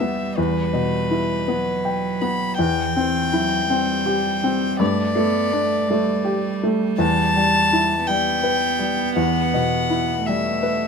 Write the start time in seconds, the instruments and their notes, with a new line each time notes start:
Already playing: felt piano E2 E4 G4, violin E5
0.00 cello G3, felt piano B3
0.38 felt piano E2, violin B4
0.73 felt piano B2
1.11 felt piano E4
1.48 cello F#3, felt piano B3
1.85 felt piano G5
2.21 felt piano B3, violin B5
2.59 felt piano E2, cello E3, violin G5
2.96 cello E3, felt piano C4
3.32 cello F#3, felt piano E4
3.70 cello G3, felt piano C4
4.06 felt piano G4
4.44 felt piano C4
4.79 felt piano G2, cello A3, violin D5
5.16 felt piano A3, cello B3
5.52 cello A3, felt piano D4
5.90 cello G3, felt piano A3
6.25 felt piano G4
6.63 felt piano A3
6.98 felt piano E2, violin A5
7.36 felt piano G3
7.73 felt piano E4
8.06 felt piano G3, cello B3, violin G5
8.44 felt piano B4
8.79 felt piano G3
9.15 felt piano E2, violin F#5
9.54 felt piano B2
9.90 felt piano E4
10.26 felt piano G3, cello A3, violin E5
10.63 felt piano B4